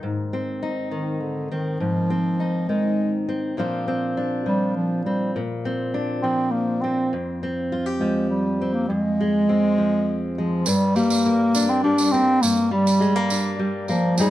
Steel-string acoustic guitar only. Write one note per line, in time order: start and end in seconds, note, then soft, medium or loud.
0.00 1.77 G#2 medium
0.00 0.90 D#3 medium
0.33 1.51 C4 medium
0.63 1.77 D#4 medium
0.91 2.68 D#3 medium
1.51 2.10 C4 soft
1.80 3.54 G#2 medium
2.10 3.28 C4 soft
2.40 3.54 D#4 medium
2.69 3.57 D#3 medium
3.29 3.58 C4 medium
3.57 5.35 A#2 medium
3.57 4.45 F3 medium
3.57 3.87 C4 soft
3.57 4.17 D4 soft
3.57 7.13 F4 medium
3.88 5.06 C4 medium
4.17 5.32 D4 medium
4.46 6.23 F3 medium
5.06 5.39 C4 soft
5.36 7.13 A#2 medium
5.65 6.83 C4 medium
5.94 7.09 D4 medium
6.24 7.89 F3 medium
6.84 7.42 C4 soft
7.13 8.86 F2 medium
7.43 8.60 C4 soft
7.72 7.86 F4 medium
7.86 8.89 G4 soft
8.01 9.78 F3 medium
8.61 8.87 C4 soft
8.90 10.63 F2 medium
9.20 10.37 G#3 medium
9.49 10.67 C4 medium
9.78 10.63 F3 medium
10.38 10.67 G#3 soft
10.67 12.39 G2 medium
10.96 11.83 G3 medium
11.26 12.13 A#3 medium
11.55 12.39 D4 medium
11.84 12.39 G3 medium
12.14 12.39 A#3 medium
12.42 14.14 G2 medium
12.71 13.58 G3 medium
13.00 13.16 G#3 medium
13.16 13.88 A#3 medium
13.31 14.15 D4 medium
13.59 14.14 G3 medium
13.89 14.15 A#3 medium
14.18 14.30 F2 medium
14.18 14.30 F3 medium
14.18 14.30 G#3 medium
14.18 14.30 D#4 medium
14.18 14.30 G#4 medium